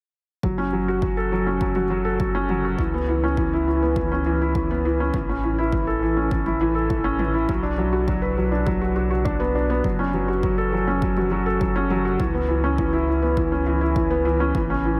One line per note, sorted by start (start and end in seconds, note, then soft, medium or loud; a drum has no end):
0.43 2.76 F#1 medium
0.43 0.57 F#3 medium
0.43 kick medium
0.58 0.66 C#4 medium
0.73 0.87 F#3 medium
0.88 1.02 F#4 medium
1.02 1.16 F#3 medium
1.02 kick medium
1.17 1.31 A4 medium
1.32 1.46 F#3 medium
1.47 1.60 C#4 medium
1.61 1.75 F#3 medium
1.61 kick medium
1.75 1.84 F#4 medium
1.75 mid tom medium
1.90 2.04 F#3 medium
2.05 2.19 A4 medium
2.20 2.34 F#3 medium
2.20 kick medium
2.35 2.49 C#4 medium
2.49 2.63 F#3 medium
2.49 mid tom soft
2.65 2.78 F#4 medium
2.78 5.11 C#2 medium
2.78 2.93 E3 medium
2.78 kick medium
2.94 3.02 B3 medium
3.09 3.22 E3 medium
3.24 3.37 C#4 medium
3.37 3.52 E3 medium
3.37 kick medium
3.53 3.67 E4 medium
3.68 3.81 E3 medium
3.83 3.96 B3 medium
3.96 4.10 E3 medium
3.96 kick medium
4.12 4.20 C#4 medium
4.26 4.40 E3 medium
4.42 4.55 E4 medium
4.55 4.69 E3 medium
4.55 kick medium
4.71 4.84 B3 medium
4.85 4.99 E3 medium
5.00 5.14 C#4 medium
5.14 7.46 A1 medium
5.14 5.28 E3 medium
5.14 kick medium
5.29 5.37 C#4 medium
5.44 5.57 E3 medium
5.58 5.72 E4 medium
5.73 5.87 E3 medium
5.73 kick medium
5.87 6.01 A4 medium
6.02 6.16 E3 medium
6.17 6.31 C#4 medium
6.31 6.46 E3 medium
6.31 kick loud
6.46 6.54 E4 medium
6.46 mid tom soft
6.61 6.75 E3 medium
6.75 6.89 A4 medium
6.89 7.04 E3 medium
6.89 kick medium
7.04 7.19 C#4 medium
7.19 7.33 E3 medium
7.19 mid tom soft
7.34 7.48 E4 medium
7.49 9.81 B1 medium
7.49 7.63 F#3 medium
7.49 kick medium
7.63 7.72 D4 medium
7.78 7.92 F#3 medium
7.93 8.07 F#4 medium
8.08 8.22 F#3 medium
8.08 kick medium
8.22 8.36 B4 medium
8.37 8.51 F#3 medium
8.52 8.66 D4 medium
8.66 8.80 F#3 medium
8.66 kick medium
8.81 8.90 F#4 medium
8.96 9.09 F#4 medium
9.11 9.25 F#4 medium
9.25 9.39 D4 medium
9.25 kick medium
9.40 9.54 B3 medium
9.55 9.69 D4 medium
9.70 9.84 B3 medium
9.84 12.17 F#1 medium
9.84 9.98 F#3 medium
9.84 kick medium
9.99 10.07 C#4 medium
10.14 10.28 F#3 medium
10.28 10.42 F#4 medium
10.43 10.57 F#3 medium
10.43 kick medium
10.58 10.72 A4 medium
10.73 10.87 F#3 medium
10.87 11.01 C#4 medium
11.02 11.16 F#3 medium
11.02 kick medium
11.17 11.25 F#4 medium
11.17 mid tom soft
11.31 11.45 F#3 medium
11.46 11.60 A4 medium
11.61 11.75 F#3 medium
11.61 kick medium
11.76 11.90 C#4 medium
11.90 12.04 F#3 medium
11.90 mid tom soft
12.05 12.19 F#4 medium
12.20 14.52 C#2 medium
12.20 12.34 E3 medium
12.20 kick medium
12.34 12.43 B3 medium
12.49 12.63 E3 medium
12.64 12.78 C#4 medium
12.78 12.92 E3 medium
12.78 kick medium
12.93 13.07 E4 medium
13.08 13.22 E3 medium
13.22 13.36 B3 medium
13.37 13.51 E3 medium
13.37 kick medium
13.52 13.60 C#4 medium
13.66 13.80 E3 medium
13.81 13.95 E4 medium
13.96 14.10 E3 medium
13.96 kick medium
14.11 14.25 B3 medium
14.25 14.39 E3 medium
14.40 14.54 C#4 medium
14.55 15.00 A1 medium
14.55 14.69 E3 medium
14.55 kick medium
14.70 14.78 C#4 medium
14.85 14.99 E3 medium